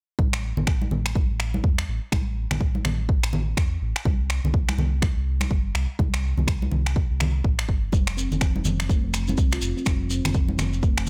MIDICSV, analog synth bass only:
0, 0, Header, 1, 2, 480
1, 0, Start_track
1, 0, Key_signature, 0, "minor"
1, 0, Tempo, 483871
1, 186, Time_signature, 4, 2, 24, 8
1, 11005, End_track
2, 0, Start_track
2, 0, Title_t, "Analog synth bass"
2, 0, Program_c, 0, 38
2, 185, Note_on_c, 0, 33, 92
2, 527, Note_off_c, 0, 33, 0
2, 568, Note_on_c, 0, 33, 90
2, 876, Note_off_c, 0, 33, 0
2, 904, Note_on_c, 0, 33, 98
2, 1246, Note_off_c, 0, 33, 0
2, 1291, Note_on_c, 0, 33, 92
2, 1598, Note_off_c, 0, 33, 0
2, 1624, Note_on_c, 0, 40, 80
2, 1829, Note_off_c, 0, 40, 0
2, 1864, Note_on_c, 0, 33, 85
2, 1982, Note_off_c, 0, 33, 0
2, 2105, Note_on_c, 0, 33, 93
2, 2447, Note_off_c, 0, 33, 0
2, 2489, Note_on_c, 0, 33, 92
2, 2797, Note_off_c, 0, 33, 0
2, 2825, Note_on_c, 0, 33, 100
2, 3167, Note_off_c, 0, 33, 0
2, 3205, Note_on_c, 0, 33, 91
2, 3515, Note_off_c, 0, 33, 0
2, 3542, Note_on_c, 0, 40, 78
2, 3748, Note_off_c, 0, 40, 0
2, 3782, Note_on_c, 0, 33, 85
2, 3901, Note_off_c, 0, 33, 0
2, 4022, Note_on_c, 0, 36, 92
2, 4365, Note_off_c, 0, 36, 0
2, 4406, Note_on_c, 0, 36, 93
2, 4715, Note_off_c, 0, 36, 0
2, 4740, Note_on_c, 0, 36, 104
2, 5084, Note_off_c, 0, 36, 0
2, 5123, Note_on_c, 0, 36, 87
2, 5434, Note_off_c, 0, 36, 0
2, 5462, Note_on_c, 0, 31, 84
2, 5668, Note_off_c, 0, 31, 0
2, 5700, Note_on_c, 0, 36, 87
2, 5820, Note_off_c, 0, 36, 0
2, 5943, Note_on_c, 0, 36, 95
2, 6286, Note_off_c, 0, 36, 0
2, 6328, Note_on_c, 0, 36, 89
2, 6637, Note_off_c, 0, 36, 0
2, 6662, Note_on_c, 0, 36, 104
2, 7005, Note_off_c, 0, 36, 0
2, 7048, Note_on_c, 0, 36, 89
2, 7356, Note_off_c, 0, 36, 0
2, 7386, Note_on_c, 0, 33, 95
2, 7590, Note_off_c, 0, 33, 0
2, 7625, Note_on_c, 0, 31, 82
2, 7830, Note_off_c, 0, 31, 0
2, 7864, Note_on_c, 0, 29, 92
2, 8206, Note_off_c, 0, 29, 0
2, 8246, Note_on_c, 0, 29, 92
2, 8556, Note_off_c, 0, 29, 0
2, 8582, Note_on_c, 0, 29, 102
2, 8925, Note_off_c, 0, 29, 0
2, 8968, Note_on_c, 0, 29, 93
2, 9277, Note_off_c, 0, 29, 0
2, 9302, Note_on_c, 0, 36, 81
2, 9509, Note_off_c, 0, 36, 0
2, 9539, Note_on_c, 0, 29, 90
2, 9660, Note_off_c, 0, 29, 0
2, 9783, Note_on_c, 0, 29, 93
2, 10125, Note_off_c, 0, 29, 0
2, 10166, Note_on_c, 0, 29, 92
2, 10476, Note_off_c, 0, 29, 0
2, 10502, Note_on_c, 0, 29, 101
2, 10845, Note_off_c, 0, 29, 0
2, 10885, Note_on_c, 0, 29, 90
2, 11005, Note_off_c, 0, 29, 0
2, 11005, End_track
0, 0, End_of_file